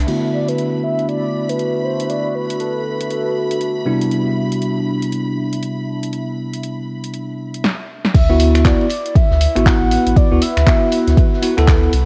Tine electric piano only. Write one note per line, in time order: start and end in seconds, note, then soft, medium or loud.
0.07 3.83 D3 medium
0.07 3.84 A3 medium
0.07 3.84 B3 medium
0.07 3.84 E4 medium
0.07 3.84 F#4 medium
3.85 7.64 C3 medium
3.85 7.64 G3 medium
3.85 7.64 B3 medium
3.85 7.64 D4 medium
3.85 7.65 E4 medium
8.30 8.63 B3 loud
8.30 8.63 E4 medium
8.30 8.63 F#4 loud
8.65 8.86 B3 medium
8.65 8.86 E4 medium
8.65 8.86 F#4 medium
9.55 10.28 B3 medium
9.55 10.28 E4 medium
9.55 10.28 F#4 loud
10.31 10.41 B3 medium
10.31 10.41 E4 medium
10.31 10.41 F#4 loud
10.66 11.40 B3 medium
10.66 11.40 E4 medium
10.66 11.41 F#4 medium
11.42 11.54 B3 medium
11.42 11.54 E4 medium
11.42 11.54 F#4 medium
11.57 11.91 B3 loud
11.57 11.92 E4 loud
11.57 11.92 A4 loud